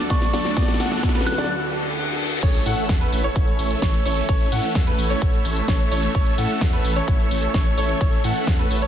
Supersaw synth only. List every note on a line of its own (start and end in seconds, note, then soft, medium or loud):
0.10 0.30 F#3 medium
0.10 0.30 A3 medium
0.10 0.30 D4 medium
0.10 0.30 A4 medium
0.10 0.30 D5 loud
0.33 0.54 F#3 medium
0.33 0.54 A3 medium
0.33 0.54 D4 medium
0.33 0.54 A4 medium
0.33 0.54 D5 loud
0.57 0.76 F#3 medium
0.57 0.76 A3 medium
0.57 0.77 D4 medium
0.57 0.76 A4 medium
0.57 0.76 D5 loud
0.80 1.12 F#3 medium
0.80 1.12 A3 medium
0.80 1.12 D4 medium
0.80 1.12 A4 medium
0.80 1.12 F#5 medium
1.15 1.35 F#3 medium
1.15 1.35 A3 medium
1.15 1.35 D4 medium
1.15 1.35 A4 medium
1.15 1.35 B4 medium
1.38 1.50 F#3 medium
1.38 1.50 A3 medium
1.38 1.50 D4 medium
1.38 1.50 A4 medium
1.38 1.50 D5 medium
2.43 2.63 E3 medium
2.43 2.63 A3 medium
2.43 2.63 C#4 medium
2.43 2.63 A4 medium
2.43 2.63 C#5 loud
2.66 2.98 E3 medium
2.66 2.98 A3 medium
2.66 2.98 C#4 medium
2.66 2.98 A4 medium
2.66 2.98 F#5 medium
3.01 3.21 E3 medium
3.01 3.21 A3 medium
3.01 3.21 C#4 medium
3.01 3.21 A4 medium
3.01 3.21 B4 medium
3.24 3.80 E3 medium
3.24 3.80 A3 medium
3.24 3.80 C#4 medium
3.24 3.79 A4 medium
3.24 3.79 C#5 medium
3.82 4.02 E3 medium
3.82 4.02 A3 medium
3.82 4.02 C#4 medium
3.82 4.02 A4 medium
3.82 4.02 C#5 loud
4.06 4.26 E3 medium
4.06 4.26 A3 medium
4.06 4.26 C#4 medium
4.06 4.26 A4 medium
4.06 4.26 C#5 loud
4.29 4.49 E3 medium
4.29 4.49 A3 medium
4.29 4.49 C#4 medium
4.29 4.49 A4 medium
4.29 4.49 C#5 loud
4.52 4.84 E3 medium
4.52 4.84 A3 medium
4.52 4.84 C#4 medium
4.52 4.84 A4 medium
4.52 4.84 F#5 medium
4.87 5.07 E3 medium
4.87 5.07 A3 medium
4.87 5.07 C#4 medium
4.87 5.07 A4 medium
4.87 5.07 B4 medium
5.10 5.66 E3 medium
5.10 5.66 A3 medium
5.10 5.66 C#4 medium
5.10 5.66 A4 medium
5.10 5.66 C#5 loud
5.68 5.88 E3 loud
5.68 5.88 A3 medium
5.68 5.88 C#4 medium
5.68 5.88 A4 medium
5.68 5.88 C#5 loud
5.92 6.12 E3 medium
5.92 6.12 A3 medium
5.92 6.12 C#4 medium
5.92 6.12 A4 medium
5.92 6.12 C#5 loud
6.15 6.35 E3 medium
6.15 6.35 A3 medium
6.15 6.35 C#4 medium
6.15 6.35 A4 medium
6.15 6.35 C#5 loud
6.38 6.70 E3 medium
6.38 6.70 A3 medium
6.38 6.70 C#4 medium
6.38 6.70 A4 medium
6.38 6.70 F#5 medium
6.73 6.93 E3 medium
6.73 6.93 A3 medium
6.73 6.93 C#4 medium
6.73 6.93 A4 medium
6.73 6.93 B4 medium
6.96 7.52 E3 medium
6.96 7.52 A3 medium
6.96 7.52 C#4 medium
6.96 7.52 A4 medium
6.96 7.52 C#5 loud
7.54 7.74 E3 medium
7.54 7.74 A3 medium
7.54 7.74 C#4 medium
7.54 7.74 A4 medium
7.54 7.74 C#5 loud
7.78 7.98 E3 medium
7.78 7.98 A3 medium
7.78 7.98 C#4 medium
7.78 7.98 A4 medium
7.78 7.98 C#5 loud
8.01 8.21 E3 medium
8.01 8.21 A3 medium
8.01 8.21 C#4 medium
8.01 8.21 A4 medium
8.01 8.21 C#5 loud
8.24 8.56 E3 medium
8.24 8.56 A3 medium
8.24 8.56 C#4 medium
8.24 8.56 A4 medium
8.24 8.56 F#5 medium
8.59 8.79 E3 medium
8.59 8.79 A3 medium
8.59 8.79 C#4 medium
8.59 8.79 A4 medium
8.59 8.79 B4 medium
8.82 8.87 E3 medium
8.82 8.87 A3 medium
8.82 8.87 C#4 medium
8.82 8.87 A4 medium
8.82 8.87 C#5 loud